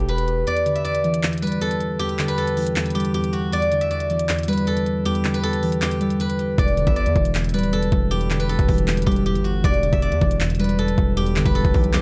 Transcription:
Already playing: E1 G4 A4
0.09 B4, closed hi-hat
0.18 closed hi-hat
0.28 closed hi-hat
0.47 E2 D5, closed hi-hat
0.57 closed hi-hat
0.66 D3, closed hi-hat
0.76 E5, closed hi-hat
0.85 E2 D5, closed hi-hat
0.95 closed hi-hat
1.04 E3, closed hi-hat
1.14 closed hi-hat
1.23 E2, clap, closed hi-hat
1.33 closed hi-hat
1.38 closed hi-hat
1.42 G3 B4, closed hi-hat
1.47 closed hi-hat
1.52 closed hi-hat
1.61 E2 A4, closed hi-hat
1.71 closed hi-hat
1.80 closed hi-hat
1.99 E2 G4, closed hi-hat
2.09 closed hi-hat
2.19 D3, clap, closed hi-hat
2.28 B4, closed hi-hat
2.38 E2 A4, closed hi-hat
2.47 closed hi-hat
2.57 E3, closed hi-hat, open hi-hat
2.67 closed hi-hat
2.76 E2, clap, closed hi-hat
2.86 closed hi-hat
2.90 closed hi-hat
2.95 G3 G4, closed hi-hat
3.00 closed hi-hat
3.05 closed hi-hat
3.14 E2 G4, closed hi-hat
3.24 closed hi-hat
3.33 F#4, closed hi-hat
3.53 E2 D5, closed hi-hat
3.62 closed hi-hat
3.72 D3, closed hi-hat
3.81 E5, closed hi-hat
3.90 E2 D5, closed hi-hat
4.00 closed hi-hat
4.10 E3, closed hi-hat
4.19 closed hi-hat
4.29 E2, clap, closed hi-hat
4.39 closed hi-hat
4.43 closed hi-hat
4.48 G3 B4, closed hi-hat
4.53 closed hi-hat
4.58 closed hi-hat
4.67 E2 A4, closed hi-hat
4.77 closed hi-hat
4.86 closed hi-hat
5.05 E2 G4, closed hi-hat
5.15 closed hi-hat
5.24 D3, clap, closed hi-hat
5.34 B4, closed hi-hat
5.43 E2 A4, closed hi-hat
5.53 closed hi-hat
5.63 E3, closed hi-hat, open hi-hat
5.72 closed hi-hat
5.82 E2 G4, clap, closed hi-hat
5.91 closed hi-hat
6.01 G3, closed hi-hat
6.10 closed hi-hat
6.20 E2 B4, closed hi-hat
6.30 closed hi-hat
6.39 closed hi-hat
6.58 E1 E2 D5, kick, closed hi-hat
6.68 closed hi-hat
6.77 D3, closed hi-hat
6.87 G1 E5, kick, closed hi-hat
6.96 E2 D5, closed hi-hat
7.06 E2, closed hi-hat
7.16 E1 E3, kick, closed hi-hat
7.25 closed hi-hat
7.35 E2, clap, closed hi-hat
7.44 closed hi-hat
7.49 closed hi-hat
7.54 D1 G3 B4, closed hi-hat
7.59 closed hi-hat
7.63 closed hi-hat
7.73 E1 E2 A4, closed hi-hat
7.83 closed hi-hat
7.92 E1, kick, closed hi-hat
8.11 E2 G4, closed hi-hat
8.21 closed hi-hat
8.30 D3, clap, closed hi-hat
8.40 B4, closed hi-hat
8.49 E2 A4, closed hi-hat
8.59 E1, kick, closed hi-hat
8.69 E1 E3, kick, closed hi-hat, open hi-hat
8.78 closed hi-hat
8.87 E2, clap, closed hi-hat
8.97 closed hi-hat
9.02 closed hi-hat
9.06 E1 G3 G4, kick, closed hi-hat
9.12 closed hi-hat
9.16 closed hi-hat
9.26 E2 G4, closed hi-hat
9.35 G1, closed hi-hat
9.44 F#4, closed hi-hat
9.64 E1 E2 D5, kick, closed hi-hat
9.74 closed hi-hat
9.83 D3, closed hi-hat
9.93 E1 E5, kick, closed hi-hat
10.02 E2 D5, closed hi-hat
10.12 E2, closed hi-hat
10.21 E1 E3, kick, closed hi-hat
10.31 closed hi-hat
10.41 E2, clap, closed hi-hat
10.50 closed hi-hat
10.55 closed hi-hat
10.59 G3 B4, closed hi-hat
10.64 closed hi-hat
10.69 closed hi-hat
10.78 E2 A4, closed hi-hat
10.88 closed hi-hat
10.98 E1, kick, closed hi-hat
11.17 E2 G4, closed hi-hat
11.26 closed hi-hat
11.36 G1 D3, clap, closed hi-hat
11.46 E1 B4, kick, closed hi-hat
11.55 E2 A4, closed hi-hat
11.65 E1, kick, closed hi-hat
11.74 B1 E3, kick, closed hi-hat, open hi-hat
11.84 closed hi-hat
11.93 E2 G4, clap, closed hi-hat

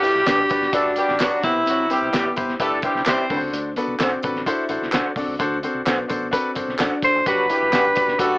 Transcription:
Already playing: G2 G4
0.02 G3 E4 F#4 G4 B4 D5, closed hi-hat, tambourine
0.15 B1
0.25 A1 D4 F#4 G4 B4 D5, snare, clap, closed hi-hat, tambourine
0.49 G1 F#4 G4 B4 D5, kick, closed hi-hat, tambourine
0.62 snare
0.73 F#1 A3 D4 F#4 G4 A4 B4 D5, kick, closed hi-hat, tambourine
0.96 G3 F#4 G4 B4 D5, closed hi-hat, tambourine
1.08 A1, snare
1.20 G1 F#3 D4 F#4 G4 B4 D5, snare, clap, closed hi-hat, tambourine
1.43 C2 C3 B3 E4 G4 B4 C5, kick, closed hi-hat, tambourine
1.56 B1
1.66 C2 F#3 C4 F#4, closed hi-hat, tambourine
1.90 G3 C4 E4 G4 B4 C5, closed hi-hat, tambourine
2.01 B1
2.13 A1 B3 E4 G4 B4 D5 E5, snare, clap, closed hi-hat, tambourine
2.36 G1 E4 G4 B4 C5, kick, closed hi-hat, tambourine
2.49 snare
2.59 G1 A3 D4 E4 G4 A4 B4 D5, kick, closed hi-hat, tambourine
2.82 G3 E4 G4 B4 C5, kick, closed hi-hat, tambourine
2.95 C2, snare
3.06 B1 C4 E4 G4 B4 C5 D5 E5, snare, clap, closed hi-hat, tambourine
3.30 D2 D3 D4 F#4 A4 B4, kick, open hi-hat
3.37 C5
3.41 C#2
3.53 D2 D4, closed hi-hat, tambourine
3.76 B3 D4 F#4 A4 B4, closed hi-hat, tambourine
3.88 C2
3.99 B1 C4 D4 F#4 A4 C5 F#5, snare, clap, closed hi-hat, tambourine
4.23 A1 D4 F#4 A4 B4, kick, closed hi-hat, tambourine
4.36 snare
4.46 D4 E4 F#4 A4 C5, kick, closed hi-hat, tambourine
4.69 A1 D4 F#4 A4 C5, closed hi-hat, tambourine
4.82 C2, snare
4.92 B1 D4 F#4 A4 C5 F#5, snare, clap, closed hi-hat, tambourine
5.16 C2 D3 C4 D4 F#4 A4 D5, kick, open hi-hat, tambourine
5.27 C#2
5.39 D2 D4 F#4 A4 C5, kick, closed hi-hat, tambourine
5.63 C4 D4 F#4 A4 C5, closed hi-hat, tambourine
5.74 C2
5.86 B1 B3 D4 F#4 A4 C5 F#5, snare, clap, closed hi-hat, tambourine
6.08 A1 D4 F#4 A4 C5, kick, closed hi-hat, tambourine
6.31 C4 D4 F#4 A4 B4, kick, closed hi-hat, tambourine
6.55 G1 D4 F#4 A4 C5, kick, closed hi-hat, tambourine
6.68 B1, snare
6.78 A1 D4 F#4 A4 C5 D5 F#5, snare, clap, closed hi-hat, tambourine
7.02 F1 D4 F#4 A4 C5, kick, closed hi-hat, tambourine
7.15 F#1
7.26 G1 G2 F#3 D4 F#4 G4 B4, kick, closed hi-hat, tambourine
7.49 G3 D4 E4 F#4 G4 B4, closed hi-hat, tambourine
7.62 F#1
7.72 A1 D4 F#4 G4 B4 F#5, snare, clap, closed hi-hat, tambourine
7.95 G1 D4 F#4 G4 B4, kick, closed hi-hat, tambourine
8.08 snare
8.19 F#1 A3 D4 F#4 G4 A4 B4, kick, closed hi-hat, tambourine

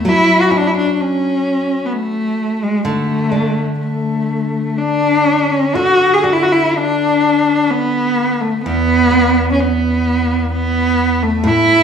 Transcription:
Already playing: B3
0.05 F#3 E4
0.41 F#4
0.50 C#4 E4
0.58 D4
0.67 E4
0.77 D4
0.93 D4
1.00 C#4
1.86 B3
1.92 A3
2.63 G#3
2.85 D3 A3
3.32 D4
3.80 A3
4.78 D4
5.52 C#4
5.75 D3 F#4
6.14 G#4
6.24 D4 F#4
6.33 E4
6.42 F#4
6.52 E4
6.77 D4
7.71 B3
8.41 A3
8.64 E2 B3
9.11 B3
9.52 C#4
9.60 B3
10.53 B3
11.22 A3
11.44 A2 E4

